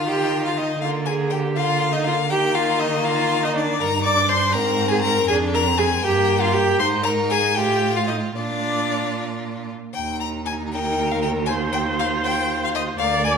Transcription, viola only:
0.08 G4
0.47 F4
0.59 D#4
0.83 F4
1.09 G#4
1.32 G4
1.56 F4
1.93 D#4
2.06 F4
2.30 G4
2.55 F4
2.81 D#4
3.05 F4
3.43 D#4
3.55 D4
3.80 A#4
4.04 D5
4.29 C5
4.53 A#4
4.91 G#4
5.03 A#4
5.29 G#4
5.53 A#4
5.78 G#4
6.04 G4
6.41 F4
6.54 G4
6.80 C5
7.05 A#4
7.31 G#4
7.57 G4
7.96 F4
8.08 D#4
8.35 D4
10.74 A#4
11.48 C5
12.99 D5

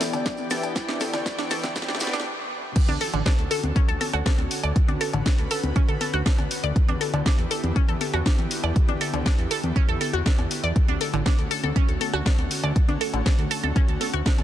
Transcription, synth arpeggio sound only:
0.01 A4
0.14 D3
0.26 D4
0.51 A4
0.89 D4
1.01 A4
1.13 D3
1.38 D4
1.51 A4
1.63 D3
1.88 D4
2.13 D4
2.89 D4
3.01 A4
3.13 D3
3.26 D4
3.51 A4
3.76 C#4
3.88 A4
4.01 A4
4.13 F#4
4.26 D4
4.63 D5
4.88 D4
5.01 A4
5.13 D3
5.26 D4
5.51 A4
5.76 C#4
5.88 A4
6.01 A4
6.14 F#4
6.26 D4
6.64 D5
6.89 D4
7.01 A4
7.13 D3
7.26 D4
7.51 A4
7.76 C#4
7.89 A4
8.01 A4
8.14 F#4
8.26 D4
8.64 D5
8.89 D4
9.01 A4
9.14 D3
9.26 D4
9.51 A4
9.76 C#4
9.89 A4
10.01 A4
10.13 F#4
10.26 D4
10.64 D5
10.88 D4
11.01 A4
11.13 D3
11.26 D4
11.51 A4
11.64 A4
11.76 C#4
12.01 A4
12.13 F#4
12.26 D4
12.63 D5
12.89 D4
13.01 A4
13.14 D3
13.26 D4
13.51 A4
13.64 A4
13.76 C#4
14.01 A4
14.13 F#4
14.26 D4

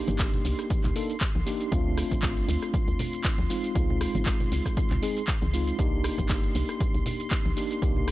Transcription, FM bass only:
0.08 G1
0.45 C2
0.84 C2
1.35 C2
1.72 D2
2.11 A1
2.48 D2
2.88 D2
3.39 D2
3.75 C#2
4.15 G#1
4.52 C#2
4.91 C#2
5.42 C#2
5.79 C2
6.18 G1
6.55 C2
6.94 C2
7.45 C2
7.82 C2

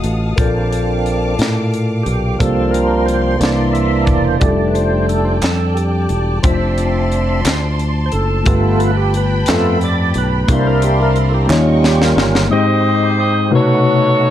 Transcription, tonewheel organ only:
0.38 A#3 C4 D4
2.03 G4
2.39 F3 A#3 D4 A4
2.71 A#4
3.06 C5
3.38 E3 A#3 D4 D5
3.73 E5
4.06 D5
4.24 C5
4.40 G3 A3 D4 D5
4.67 B4
4.74 C5
5.09 A4
5.25 C5
5.43 A4
5.75 G4
6.43 F3 C4 E5
8.06 C5
8.12 A4
8.47 A3 B3 F4
8.79 B4
8.97 G4
9.17 B4
9.49 A3 B3 F4 A4
9.84 D5
10.18 B4
10.51 A#3 D4 E4 C5
10.67 A#4
10.84 G4
11.02 A#4
11.18 E4
11.29 A4
11.34 G4
11.50 G3 C#4 D#4 F4
11.87 G4
12.03 A#4
12.52 G#3 C4 D#4 G4 C5
13.51 A3 B3 D#4 F#4 A#4
13.58 B4

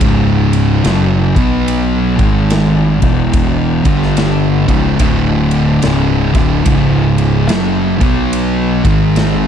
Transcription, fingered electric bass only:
0.01 C#1
0.85 F#1
1.37 B1
2.19 G#1
3.03 E1
3.86 G1
4.69 C#1
5.00 D1
5.85 C#1
6.35 D1
6.66 C#1
7.51 F#1
8.02 B1
8.85 G#1

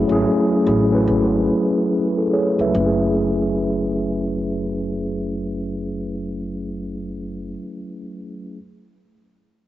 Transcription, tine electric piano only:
Already playing: F#3 A3 C#4 E4 G#4
0.08 F#3 A3 C#4 E4
0.12 G#4
0.62 F#3 A3 C#4 E4
0.67 G#4
0.89 F#3 A3 C#4
0.93 E4 B4
2.17 E4 A4
2.33 G#4 C#5
2.61 B4 E5
2.65 F#3
2.71 A3
2.76 C#4
2.81 E4
2.86 G#4

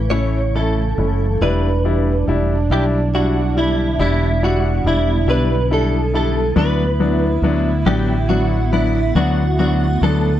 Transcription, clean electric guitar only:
0.10 C#5
0.56 A4
1.42 B4
2.72 G4
3.15 F#4
3.58 E4
4.01 E4
4.44 F#4
4.87 E4
5.30 B4
5.73 A4
6.15 A4
6.58 B4
7.87 G4
8.29 F#4
8.73 E4
9.16 F#4
9.59 F#4
10.03 A4

